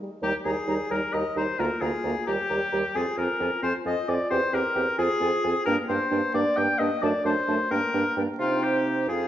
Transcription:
0.22 bassoon D#2, french horn G3, clarinet D#4, oboe G4, flute A#5
0.44 bassoon D#2, french horn G3, clarinet D#4, oboe G#4, flute A#5
0.67 bassoon D#2, french horn G3, clarinet D#4, flute A#5
0.90 bassoon D#2, french horn G3, clarinet D#4, oboe A#4, flute A#5
1.13 bassoon D#2, french horn G3, clarinet D#4, oboe D#5, flute A#5
1.36 bassoon D#2, french horn G3, clarinet D#4, oboe C5, flute A#5
1.58 bassoon D2, french horn A#3, clarinet F4, oboe A#4, flute A#5
1.81 bassoon D2, french horn A#3, clarinet F4, oboe G#4, flute A#5
2.04 bassoon D2, french horn A#3, clarinet F4, flute A#5
2.26 bassoon D#2, french horn G3, oboe G4, clarinet G4, flute A#5
2.49 bassoon D#2, french horn G3, clarinet G4, flute A#5
2.72 bassoon D#2, french horn G3, clarinet G4, flute A#5
2.94 bassoon F2, french horn C4, clarinet F4, oboe G#4, flute G#5
3.17 bassoon F2, french horn C4, clarinet F4, oboe A#4, flute G#5
3.40 bassoon F2, french horn C4, clarinet F4, flute G#5
3.63 bassoon F2, french horn C4, clarinet F4, oboe C5, flute G#5
3.85 bassoon F2, french horn C4, clarinet F4, oboe D#5, flute G#5
4.08 bassoon F2, french horn C4, clarinet F4, oboe D5, flute G#5
4.30 bassoon E2, french horn C4, clarinet G4, oboe C5, flute G5
4.53 bassoon E2, french horn C4, clarinet G4, oboe A#4, flute G5
4.75 bassoon E2, french horn C4, clarinet G4, flute G5
4.98 bassoon F2, french horn C4, clarinet F4, oboe G#4, flute G#5
5.21 bassoon F2, french horn C4, clarinet F4, flute G#5
5.44 bassoon F2, french horn C4, clarinet F4, flute G#5
5.65 bassoon G2, french horn A#3, clarinet D4, oboe A#4, flute G5
5.89 bassoon G2, french horn A#3, clarinet D4, oboe C5, flute G5
6.11 bassoon G2, french horn A#3, clarinet D4, flute G5
6.34 bassoon G2, french horn A#3, clarinet D4, oboe D5, flute G5
6.57 bassoon G2, french horn A#3, clarinet D4, oboe G5, flute G5
6.79 bassoon G2, french horn A#3, clarinet D4, oboe D#5, flute G5
7.02 bassoon F#2, french horn A3, clarinet D4, oboe D5, flute A5
7.25 bassoon F#2, french horn A3, clarinet D4, oboe C5, flute A5
7.48 bassoon F#2, french horn A3, clarinet D4, flute A5
7.71 bassoon G2, french horn A#3, clarinet D4, oboe A#4, flute G5
7.94 bassoon G2, french horn A#3, clarinet D4, flute G5
8.16 bassoon G2, french horn A#3, clarinet D4, flute G5
8.39 bassoon C3, french horn C4, clarinet D#4, oboe F4, flute G5
8.63 oboe G4
9.08 bassoon F2, french horn C4, clarinet F4, oboe G#4, flute F5

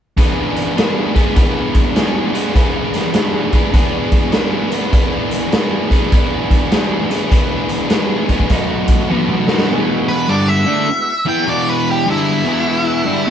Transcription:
0.17 overdriven electric guitar E3 B3 D4 G#4 B4, kick, closed hi-hat
0.56 closed hi-hat
0.76 overdriven electric guitar E3 B3 D4 G#4 B4, snare, closed hi-hat
1.14 overdriven electric guitar E3 B3 D4 G#4 B4, kick, closed hi-hat
1.35 overdriven electric guitar E3 B3 D4 G#4 B4, kick, closed hi-hat
1.75 kick, closed hi-hat
1.94 overdriven electric guitar E3 B3 D4 G#4 B4, snare, closed hi-hat
2.34 overdriven electric guitar E3 B3 D4 G#4 B4, closed hi-hat
2.54 overdriven electric guitar E3 B3 D4 G#4 B4, kick, closed hi-hat
2.94 snare, closed hi-hat
3.14 overdriven electric guitar E3 B3 D4 G#4 B4, snare, closed hi-hat
3.52 overdriven electric guitar E3 B3 D4 G#4 B4, kick, closed hi-hat
3.73 overdriven electric guitar E3 B3 D4 G#4 B4, kick, closed hi-hat
4.12 kick, closed hi-hat
4.32 overdriven electric guitar E3 B3 D4 G#4 B4, snare, closed hi-hat
4.70 overdriven electric guitar E3 B3 D4 G#4 B4, closed hi-hat
4.91 overdriven electric guitar E3 B3 D4 G#4 B4, kick, closed hi-hat
5.31 closed hi-hat
5.52 overdriven electric guitar E3 B3 D4 G#4 B4, snare, closed hi-hat
5.90 overdriven electric guitar E3 B3 D4 G#4 B4, kick, closed hi-hat
6.11 overdriven electric guitar E3 B3 D4 G#4 B4, kick, closed hi-hat
6.51 kick, closed hi-hat
6.71 overdriven electric guitar E3 B3 D4 G#4 B4, snare, closed hi-hat
7.09 overdriven electric guitar E3 B3 D4 G#4 B4, closed hi-hat
7.31 overdriven electric guitar E3 B3 D4 G#4 B4, kick, closed hi-hat
7.69 closed hi-hat
7.90 overdriven electric guitar E3 B3 D4 G#4 B4, snare, closed hi-hat
8.29 overdriven electric guitar E3 B3 D4 G#4 B4, kick, closed hi-hat
8.40 kick
8.49 overdriven electric guitar B2 F#3 A3 D#4 F#4 B4, kick, closed hi-hat
8.88 kick, closed hi-hat
9.09 overdriven electric guitar B2 F#3 A3 D#4 F#4 B4, high tom
9.29 mid tom
9.48 overdriven electric guitar B2 F#3 A3 D#4 F#4 B4, snare
9.58 snare
9.69 overdriven electric guitar E2 B2 E3, tonewheel organ G#3 B3 E4 G#4
10.08 lead electric guitar B4
10.26 overdriven electric guitar G2 D3 G3, tonewheel organ G#3 B3 E4 F#4, lead electric guitar D5
10.48 lead electric guitar E5
10.66 overdriven electric guitar D3 A3 D4
10.88 muted overdriven electric guitar stroke
11.26 overdriven electric guitar E3 B3 E4, lead electric guitar G5
11.47 overdriven electric guitar E2 B2 E3, lead electric guitar D5
11.70 lead electric guitar B4
11.91 lead electric guitar G4
12.07 overdriven electric guitar G2 D3 G3, tonewheel organ G#3 B3 E4 G#4, lead electric guitar E4
12.46 overdriven electric guitar E2 B2 E3
12.67 tonewheel organ G#3 B3 E4 F#4
13.05 overdriven electric guitar G2 D3 G3
13.26 overdriven electric guitar E2 B2

